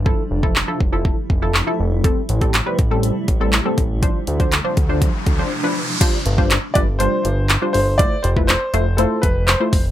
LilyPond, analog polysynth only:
\new Staff \with { instrumentName = "Analog polysynth" } { \time 4/4 \key g \mixolydian \tempo 4 = 121 <f e' a'>16 r8 <f e' a'>16 r16 <f e' a'>16 r16 <f e' a'>8 r8 <f e' a'>16 r16 <f e' a'>16 r8 | <g c' a'>16 r8 <g c' a'>16 r16 <g c' b'>16 r16 <g c' a'>8 r8 <g c' a'>16 r16 <g c' a'>16 r8 | <f d' c''>16 r8 <f d' c''>16 r16 <f d' c''>16 r16 <f d' c''>8 r8 <f d' c''>16 r16 <f d' b'>16 r8 | <g d' f' c''>16 r8 <g d' f' c''>16 r8 <g d' f' b'>16 r16 <g d' f' c''>8 r8. <g d' f' c''>16 r8 |
<a e' f' c''>16 r8 <a e' f' b'>16 r8 <a e' f' c''>16 r16 <a e' f' c''>8 r8. <a e' f' c''>16 r8 | }